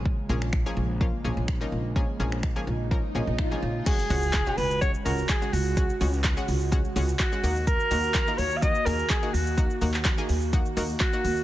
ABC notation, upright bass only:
X:1
M:4/4
L:1/16
Q:1/4=126
K:Dbmix
V:1 name="Upright bass" clef=bass
B,,,2 B,,,4 B,,,4 B,,, B,,,3 B,,,2- | B,,,2 B,,,4 B,,,4 B,,, B,,,3 B,,,2 | z2 D,,4 D,,4 D,,2 z2 D,,2- | D,,2 D,,4 D,,4 D,,2 z2 E,,2- |
E,,2 E,,4 E,,4 E,,2 z2 E,,2- | E,,2 E,,4 E,,4 E,,2 z2 E,,2 |]